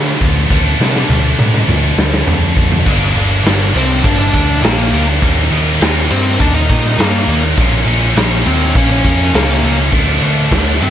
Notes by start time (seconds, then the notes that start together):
Already playing: D3 F3 A3 D4
0.21 D2, kick, closed hi-hat
0.50 D2 D3 F3 A3 D4, kick, high tom
0.80 C3, snare
0.96 snare
1.09 D2, mid tom
1.39 A2, mid tom
1.54 mid tom
1.68 D2, mid tom
1.98 D2, snare
2.14 snare
2.27 F2, floor tom
2.57 kick
2.72 floor tom
2.86 G1 G2 D3 G3 A#3 D4, kick, crash
3.15 G1 G2 D3 G3 A#3 D4, ride
3.45 G1 G2 D3 G3 A#3 D4, snare, ride
3.62 snare
3.74 C2 G2 D3 G3 A#3 C4 D4, ride
3.78 C5
4.03 G1 G2 D3 G3 A#3 D4 D5, kick, ride
4.19 D4 D5
4.33 D2 G2 D3 G3 A#3 D4, kick, ride
4.62 A#1 G2 D3 G3 A#3 D4 A#4, snare, ride
4.91 D2 G2 D3 G3 A#3 D4, ride
5.21 D#2 D#3 G3 A#3 D#4, kick, ride
5.51 D#2 D#3 G3 A#3 D#4, ride
5.80 D#2 D#3 G3 A#3 D#4, snare, ride
6.10 G2 D#3 G3 A#3 C4 D#4 C5, ride
6.39 D#2 D#3 G3 A#3 D4 D#4 D5, kick, ride
6.55 D#4 D#5
6.69 A#2 D#3 G3 A#3 D#4, kick, ride
6.85 snare
6.98 G2 D#3 G3 A#3 D#4 A#4, snare, ride
7.28 D#2 D#3 G3 A#3 D#4, ride
7.57 A#1 A#2 F3 A#3 C#4, kick, ride
7.86 A#1 A#2 F3 A#3 C#4, ride
8.16 A#1 A#2 F3 A#3 C#4, snare, ride
8.46 D#2 A#2 F3 A#3 C4 C#4 C5, ride
8.75 A#1 A#2 F3 A#3 C#4 C#5, kick, ride
8.90 C#4 C#5
9.04 F2 A#2 F3 A#3 C#4, kick, ride
9.33 C#2 A#2 F3 A#3 C#4 A#4, snare, ride
9.63 C#2 A#2 F3 A#3 C#4, ride
9.92 D2 D3 F3 A3 D4, kick, ride
10.22 D2 D3 F3 A3 D4, ride
10.51 D2 D3 F3 A3 D4, kick, snare, ride
10.80 G2 D3 F3 A3 C4 D4 C5, ride